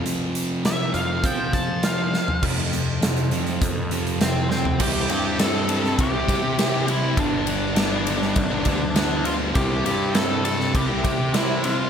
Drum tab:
CC |----------------|x---------------|x---------------|----------------|
RD |----------------|----------------|--x-x-x-x-x-x-x-|x-x-x-x-x-x-x-x-|
HH |x-x-x-x-x-x-x---|--x-xxxxx-xxx---|----------------|----------------|
SD |----o-------o-o-|----o-------o-o-|----o--o----o---|----o--o----o---|
FT |---------------o|---------------o|----------------|----------------|
BD |--------o-o-----|o-------o-------|o-------o-o-----|o-------o-o-----|

CC |----------------|
RD |x-x-x-x-x-x-x-x-|
HH |----------------|
SD |----o--o----o---|
FT |----------------|
BD |o-------o-o-----|